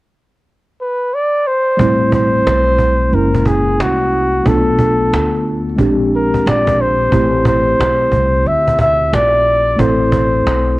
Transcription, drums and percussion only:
0, 0, Header, 1, 2, 480
1, 0, Start_track
1, 0, Key_signature, 0, "minor"
1, 0, Tempo, 666667
1, 1290, Time_signature, 4, 2, 24, 8
1, 7772, End_track
2, 0, Start_track
2, 0, Title_t, "Cajon"
2, 1290, Note_on_c, 9, 36, 94
2, 1362, Note_off_c, 9, 36, 0
2, 1528, Note_on_c, 9, 36, 90
2, 1600, Note_off_c, 9, 36, 0
2, 1690, Note_on_c, 9, 38, 29
2, 1762, Note_off_c, 9, 38, 0
2, 1778, Note_on_c, 9, 38, 98
2, 1850, Note_off_c, 9, 38, 0
2, 1931, Note_on_c, 9, 38, 33
2, 2003, Note_off_c, 9, 38, 0
2, 2005, Note_on_c, 9, 36, 74
2, 2077, Note_off_c, 9, 36, 0
2, 2175, Note_on_c, 9, 38, 37
2, 2247, Note_off_c, 9, 38, 0
2, 2249, Note_on_c, 9, 38, 40
2, 2321, Note_off_c, 9, 38, 0
2, 2408, Note_on_c, 9, 36, 76
2, 2480, Note_off_c, 9, 36, 0
2, 2487, Note_on_c, 9, 36, 86
2, 2559, Note_off_c, 9, 36, 0
2, 2651, Note_on_c, 9, 38, 26
2, 2723, Note_off_c, 9, 38, 0
2, 2736, Note_on_c, 9, 38, 101
2, 2808, Note_off_c, 9, 38, 0
2, 3126, Note_on_c, 9, 38, 29
2, 3198, Note_off_c, 9, 38, 0
2, 3208, Note_on_c, 9, 36, 97
2, 3280, Note_off_c, 9, 36, 0
2, 3446, Note_on_c, 9, 36, 83
2, 3518, Note_off_c, 9, 36, 0
2, 3607, Note_on_c, 9, 38, 27
2, 3679, Note_off_c, 9, 38, 0
2, 3697, Note_on_c, 9, 38, 101
2, 3769, Note_off_c, 9, 38, 0
2, 3853, Note_on_c, 9, 38, 31
2, 3925, Note_off_c, 9, 38, 0
2, 4099, Note_on_c, 9, 38, 40
2, 4164, Note_on_c, 9, 36, 75
2, 4171, Note_off_c, 9, 38, 0
2, 4236, Note_off_c, 9, 36, 0
2, 4566, Note_on_c, 9, 36, 70
2, 4638, Note_off_c, 9, 36, 0
2, 4660, Note_on_c, 9, 38, 93
2, 4732, Note_off_c, 9, 38, 0
2, 4804, Note_on_c, 9, 36, 97
2, 4876, Note_off_c, 9, 36, 0
2, 5048, Note_on_c, 9, 38, 27
2, 5120, Note_off_c, 9, 38, 0
2, 5127, Note_on_c, 9, 36, 101
2, 5199, Note_off_c, 9, 36, 0
2, 5365, Note_on_c, 9, 36, 95
2, 5437, Note_off_c, 9, 36, 0
2, 5528, Note_on_c, 9, 38, 29
2, 5600, Note_off_c, 9, 38, 0
2, 5620, Note_on_c, 9, 38, 106
2, 5692, Note_off_c, 9, 38, 0
2, 5773, Note_on_c, 9, 38, 31
2, 5844, Note_on_c, 9, 36, 74
2, 5845, Note_off_c, 9, 38, 0
2, 5916, Note_off_c, 9, 36, 0
2, 6016, Note_on_c, 9, 38, 34
2, 6088, Note_off_c, 9, 38, 0
2, 6089, Note_on_c, 9, 38, 46
2, 6161, Note_off_c, 9, 38, 0
2, 6247, Note_on_c, 9, 36, 71
2, 6319, Note_off_c, 9, 36, 0
2, 6327, Note_on_c, 9, 36, 85
2, 6399, Note_off_c, 9, 36, 0
2, 6492, Note_on_c, 9, 38, 23
2, 6564, Note_off_c, 9, 38, 0
2, 6577, Note_on_c, 9, 38, 95
2, 6649, Note_off_c, 9, 38, 0
2, 6968, Note_on_c, 9, 38, 30
2, 7040, Note_off_c, 9, 38, 0
2, 7049, Note_on_c, 9, 36, 92
2, 7121, Note_off_c, 9, 36, 0
2, 7287, Note_on_c, 9, 36, 90
2, 7359, Note_off_c, 9, 36, 0
2, 7451, Note_on_c, 9, 38, 31
2, 7523, Note_off_c, 9, 38, 0
2, 7537, Note_on_c, 9, 38, 103
2, 7609, Note_off_c, 9, 38, 0
2, 7772, End_track
0, 0, End_of_file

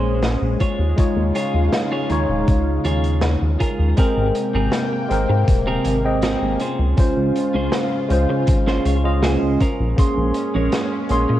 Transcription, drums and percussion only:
0, 0, Header, 1, 2, 480
1, 0, Start_track
1, 0, Tempo, 750000
1, 627, Time_signature, 4, 2, 24, 8
1, 7294, End_track
2, 0, Start_track
2, 0, Title_t, "Drums"
2, 144, Note_on_c, 9, 42, 78
2, 145, Note_on_c, 9, 38, 111
2, 208, Note_off_c, 9, 42, 0
2, 209, Note_off_c, 9, 38, 0
2, 385, Note_on_c, 9, 42, 75
2, 387, Note_on_c, 9, 36, 59
2, 449, Note_off_c, 9, 42, 0
2, 451, Note_off_c, 9, 36, 0
2, 625, Note_on_c, 9, 42, 95
2, 627, Note_on_c, 9, 36, 106
2, 689, Note_off_c, 9, 42, 0
2, 691, Note_off_c, 9, 36, 0
2, 864, Note_on_c, 9, 42, 77
2, 928, Note_off_c, 9, 42, 0
2, 1104, Note_on_c, 9, 38, 120
2, 1105, Note_on_c, 9, 42, 91
2, 1168, Note_off_c, 9, 38, 0
2, 1169, Note_off_c, 9, 42, 0
2, 1342, Note_on_c, 9, 42, 73
2, 1406, Note_off_c, 9, 42, 0
2, 1585, Note_on_c, 9, 42, 93
2, 1588, Note_on_c, 9, 36, 118
2, 1649, Note_off_c, 9, 42, 0
2, 1652, Note_off_c, 9, 36, 0
2, 1822, Note_on_c, 9, 42, 79
2, 1886, Note_off_c, 9, 42, 0
2, 1945, Note_on_c, 9, 42, 55
2, 2009, Note_off_c, 9, 42, 0
2, 2057, Note_on_c, 9, 42, 81
2, 2058, Note_on_c, 9, 38, 124
2, 2121, Note_off_c, 9, 42, 0
2, 2122, Note_off_c, 9, 38, 0
2, 2306, Note_on_c, 9, 42, 80
2, 2308, Note_on_c, 9, 36, 58
2, 2370, Note_off_c, 9, 42, 0
2, 2372, Note_off_c, 9, 36, 0
2, 2541, Note_on_c, 9, 42, 89
2, 2547, Note_on_c, 9, 36, 115
2, 2605, Note_off_c, 9, 42, 0
2, 2611, Note_off_c, 9, 36, 0
2, 2783, Note_on_c, 9, 42, 77
2, 2847, Note_off_c, 9, 42, 0
2, 3019, Note_on_c, 9, 38, 112
2, 3028, Note_on_c, 9, 42, 101
2, 3083, Note_off_c, 9, 38, 0
2, 3092, Note_off_c, 9, 42, 0
2, 3268, Note_on_c, 9, 42, 82
2, 3332, Note_off_c, 9, 42, 0
2, 3505, Note_on_c, 9, 42, 90
2, 3506, Note_on_c, 9, 36, 123
2, 3569, Note_off_c, 9, 42, 0
2, 3570, Note_off_c, 9, 36, 0
2, 3741, Note_on_c, 9, 42, 90
2, 3805, Note_off_c, 9, 42, 0
2, 3982, Note_on_c, 9, 42, 96
2, 3987, Note_on_c, 9, 38, 119
2, 4046, Note_off_c, 9, 42, 0
2, 4051, Note_off_c, 9, 38, 0
2, 4221, Note_on_c, 9, 42, 77
2, 4285, Note_off_c, 9, 42, 0
2, 4463, Note_on_c, 9, 42, 92
2, 4467, Note_on_c, 9, 36, 113
2, 4527, Note_off_c, 9, 42, 0
2, 4531, Note_off_c, 9, 36, 0
2, 4708, Note_on_c, 9, 42, 80
2, 4772, Note_off_c, 9, 42, 0
2, 4941, Note_on_c, 9, 38, 115
2, 4946, Note_on_c, 9, 42, 92
2, 5005, Note_off_c, 9, 38, 0
2, 5010, Note_off_c, 9, 42, 0
2, 5185, Note_on_c, 9, 42, 80
2, 5249, Note_off_c, 9, 42, 0
2, 5420, Note_on_c, 9, 42, 96
2, 5426, Note_on_c, 9, 36, 123
2, 5484, Note_off_c, 9, 42, 0
2, 5490, Note_off_c, 9, 36, 0
2, 5548, Note_on_c, 9, 38, 41
2, 5612, Note_off_c, 9, 38, 0
2, 5665, Note_on_c, 9, 42, 78
2, 5729, Note_off_c, 9, 42, 0
2, 5904, Note_on_c, 9, 38, 122
2, 5908, Note_on_c, 9, 42, 87
2, 5968, Note_off_c, 9, 38, 0
2, 5972, Note_off_c, 9, 42, 0
2, 6144, Note_on_c, 9, 42, 74
2, 6146, Note_on_c, 9, 36, 66
2, 6208, Note_off_c, 9, 42, 0
2, 6210, Note_off_c, 9, 36, 0
2, 6386, Note_on_c, 9, 36, 119
2, 6388, Note_on_c, 9, 42, 99
2, 6450, Note_off_c, 9, 36, 0
2, 6452, Note_off_c, 9, 42, 0
2, 6618, Note_on_c, 9, 42, 76
2, 6682, Note_off_c, 9, 42, 0
2, 6861, Note_on_c, 9, 42, 97
2, 6865, Note_on_c, 9, 38, 114
2, 6925, Note_off_c, 9, 42, 0
2, 6929, Note_off_c, 9, 38, 0
2, 7098, Note_on_c, 9, 42, 73
2, 7162, Note_off_c, 9, 42, 0
2, 7294, End_track
0, 0, End_of_file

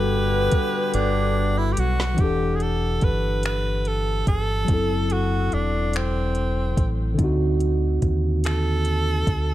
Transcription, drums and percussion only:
0, 0, Header, 1, 2, 480
1, 0, Start_track
1, 0, Key_signature, 1, "minor"
1, 0, Tempo, 833333
1, 1259, Time_signature, 6, 3, 24, 8
1, 5497, End_track
2, 0, Start_track
2, 0, Title_t, "Drums"
2, 297, Note_on_c, 9, 42, 65
2, 301, Note_on_c, 9, 36, 75
2, 354, Note_off_c, 9, 42, 0
2, 359, Note_off_c, 9, 36, 0
2, 539, Note_on_c, 9, 42, 69
2, 597, Note_off_c, 9, 42, 0
2, 1020, Note_on_c, 9, 42, 90
2, 1077, Note_off_c, 9, 42, 0
2, 1151, Note_on_c, 9, 38, 86
2, 1208, Note_off_c, 9, 38, 0
2, 1254, Note_on_c, 9, 42, 61
2, 1259, Note_on_c, 9, 36, 111
2, 1312, Note_off_c, 9, 42, 0
2, 1316, Note_off_c, 9, 36, 0
2, 1498, Note_on_c, 9, 42, 44
2, 1556, Note_off_c, 9, 42, 0
2, 1736, Note_on_c, 9, 42, 39
2, 1741, Note_on_c, 9, 36, 74
2, 1793, Note_off_c, 9, 42, 0
2, 1799, Note_off_c, 9, 36, 0
2, 1976, Note_on_c, 9, 42, 65
2, 1991, Note_on_c, 9, 26, 103
2, 2034, Note_off_c, 9, 42, 0
2, 2048, Note_off_c, 9, 26, 0
2, 2218, Note_on_c, 9, 42, 44
2, 2276, Note_off_c, 9, 42, 0
2, 2460, Note_on_c, 9, 36, 87
2, 2460, Note_on_c, 9, 42, 58
2, 2517, Note_off_c, 9, 42, 0
2, 2518, Note_off_c, 9, 36, 0
2, 2697, Note_on_c, 9, 42, 60
2, 2699, Note_on_c, 9, 36, 106
2, 2755, Note_off_c, 9, 42, 0
2, 2757, Note_off_c, 9, 36, 0
2, 2937, Note_on_c, 9, 42, 48
2, 2995, Note_off_c, 9, 42, 0
2, 3180, Note_on_c, 9, 42, 37
2, 3237, Note_off_c, 9, 42, 0
2, 3418, Note_on_c, 9, 42, 63
2, 3433, Note_on_c, 9, 26, 95
2, 3476, Note_off_c, 9, 42, 0
2, 3490, Note_off_c, 9, 26, 0
2, 3657, Note_on_c, 9, 42, 40
2, 3714, Note_off_c, 9, 42, 0
2, 3901, Note_on_c, 9, 36, 88
2, 3902, Note_on_c, 9, 42, 60
2, 3959, Note_off_c, 9, 36, 0
2, 3960, Note_off_c, 9, 42, 0
2, 4140, Note_on_c, 9, 36, 104
2, 4140, Note_on_c, 9, 42, 58
2, 4197, Note_off_c, 9, 36, 0
2, 4197, Note_off_c, 9, 42, 0
2, 4380, Note_on_c, 9, 42, 46
2, 4438, Note_off_c, 9, 42, 0
2, 4620, Note_on_c, 9, 42, 41
2, 4622, Note_on_c, 9, 36, 62
2, 4677, Note_off_c, 9, 42, 0
2, 4679, Note_off_c, 9, 36, 0
2, 4861, Note_on_c, 9, 42, 60
2, 4875, Note_on_c, 9, 26, 97
2, 4918, Note_off_c, 9, 42, 0
2, 4933, Note_off_c, 9, 26, 0
2, 5096, Note_on_c, 9, 42, 45
2, 5154, Note_off_c, 9, 42, 0
2, 5340, Note_on_c, 9, 36, 89
2, 5341, Note_on_c, 9, 42, 57
2, 5397, Note_off_c, 9, 36, 0
2, 5398, Note_off_c, 9, 42, 0
2, 5497, End_track
0, 0, End_of_file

